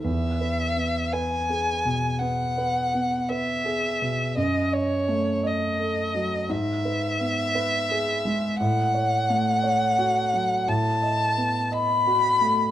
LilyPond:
<<
  \new Staff \with { instrumentName = "Violin" } { \time 12/8 \key e \major \tempo 4. = 57 e''4. gis''4. fis''4. e''4. | dis''8 cis''4 dis''4. e''2. | fis''2. a''4. b''4. | }
  \new Staff \with { instrumentName = "Grand piano" } { \time 12/8 \key e \major e,8 b'8 b8 b'8 gis'8 b,8 b8 b'8 b8 b'8 gis'8 b,8 | fis,8 dis''8 a8 dis''8 a'8 fis8 gis,8 b'8 b8 b'8 gis'8 gis8 | a,8 cis''8 a8 cis''8 fis'8 fis8 a,8 dis''8 b8 dis''8 fis'8 a8 | }
>>